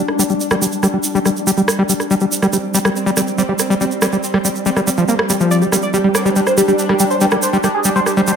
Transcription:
Already playing: synth texture G3 D4
0.08 cross-stick
0.19 acid bass G3, shaker
0.29 acid bass G3, shaker
0.40 shaker
0.51 acid bass G3, cross-stick, shaker
0.62 acid bass G3, shaker
0.72 shaker
0.83 acid bass G3, cross-stick, shaker
0.94 acid bass G3
1.03 shaker
1.15 acid bass G3, shaker
1.25 acid bass G3, cross-stick, shaker
1.36 shaker
1.47 acid bass G3, shaker
1.57 acid bass G3, shaker
1.68 cross-stick, shaker
1.79 acid bass G3
1.89 acid bass G3, shaker
2.00 cross-stick, shaker
2.11 acid bass G3, synth texture C4, shaker
2.20 acid bass G3, shaker
2.32 shaker
2.42 acid bass G3, cross-stick, shaker
2.53 acid bass G3, shaker
2.74 acid bass G3, shaker
2.85 acid bass G3, cross-stick, shaker
2.96 shaker
3.06 acid bass G3, shaker
3.17 acid bass G3, cross-stick, shaker
3.27 shaker
3.38 acid bass G3, shaker
3.49 acid bass G3
3.59 cross-stick, shaker
3.70 acid bass G3, shaker
3.81 acid bass G3, shaker
3.91 shaker
4.02 acid bass G3, cross-stick, shaker
4.12 acid bass G3, shaker
4.23 shaker
4.34 acid bass G3, cross-stick
4.45 acid bass G3, shaker
4.55 shaker
4.66 acid bass G3, shaker
4.76 acid bass G3, cross-stick, shaker
4.87 acid bass G3, shaker
4.97 acid bass F3, shaker
5.08 acid bass A#3, shaker
5.19 cross-stick
5.30 acid bass G3, shaker
5.40 acid bass F3, shaker
5.51 synth texture D4, analog synth lead D5, shaker
5.62 acid bass G3, analog synth lead G4, shaker
5.72 acid bass G3, analog synth lead G4, cross-stick, shaker
5.82 analog synth lead D5, shaker
5.93 acid bass G3, analog synth lead G4, shaker
6.04 acid bass G3, analog synth lead G4
6.15 wobble bass C4, analog synth lead D5, cross-stick, shaker
6.25 acid bass G3, analog synth lead G4, shaker
6.36 acid bass G3, analog synth lead G4, shaker
6.47 analog synth lead C5, cross-stick, shaker
6.57 acid bass G3, analog synth lead G4, shaker
6.68 acid bass G3, wobble bass D4, analog synth lead G4, shaker
6.79 shaker
6.89 acid bass G3, analog synth lead G4, cross-stick
7.00 acid bass G3, analog synth lead G4, shaker
7.11 analog synth lead C5, shaker
7.21 acid bass G3, analog synth lead G4, shaker
7.31 acid bass G3, analog synth lead G4, cross-stick, shaker
7.42 analog synth lead C5, shaker
7.53 acid bass G3, analog synth lead G4, shaker
7.64 acid bass G3, analog synth lead G4, cross-stick, shaker
7.74 analog synth lead G#4
7.84 acid bass G3, analog synth lead G4, shaker
7.96 acid bass G3, analog synth lead C5, shaker
8.06 analog synth lead G4, cross-stick, shaker
8.17 acid bass G3, analog synth lead C5, shaker
8.27 acid bass G3, shaker

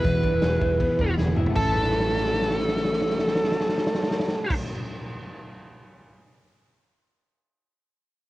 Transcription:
Already playing: clean electric guitar B3 E4 G#4, lead electric guitar B4
0.04 fingered electric bass E1, steel-string acoustic guitar E3 B3 E4 G#4, clean electric guitar E3, kick, hi-hat pedal, ride
0.23 clean electric guitar D4, kick, ride
0.32 fingered electric bass E1, steel-string acoustic guitar B3 E4 G#4, clean electric guitar E4
0.42 fingered electric bass E1, clean electric guitar G#4, snare, ride
0.61 fingered electric bass E1, clean electric guitar E4, kick, ride
0.79 steel-string acoustic guitar E3 B3 E4 G#4, clean electric guitar B3, kick, ride
0.99 fingered electric bass E1, steel-string acoustic guitar E3 B3 E4 G#4, clean electric guitar D4, kick, ride
1.09 clean electric guitar E4
1.18 fingered electric bass E1, steel-string acoustic guitar E3 B3 E4 G#4, clean electric guitar G#4, snare
1.28 high tom
1.36 fingered electric bass E1, steel-string acoustic guitar E3 B3 E4 G#4, clean electric guitar E4, mid tom
1.46 floor tom
1.50 clean electric guitar A3, steel-string acoustic guitar A3
1.55 fingered electric bass A1, steel-string acoustic guitar C#4 E4, clean electric guitar C#4, lead electric guitar A4, kick, crash
1.60 steel-string acoustic guitar B4
1.66 clean electric guitar E4
1.72 clean electric guitar B4, snare
1.83 snare
1.91 snare
2.00 snare
2.08 snare
2.17 snare
2.25 snare
2.34 snare
2.42 snare
2.51 snare
2.59 snare
2.68 snare
2.76 snare
2.84 snare
2.93 snare
3.02 snare
3.10 snare
3.19 snare
3.28 snare
3.36 snare
3.44 snare
3.52 snare
3.61 snare
3.69 snare
3.78 snare
3.87 snare
3.95 snare
4.03 snare
4.11 snare
4.20 snare
4.28 snare
4.50 kick, crash

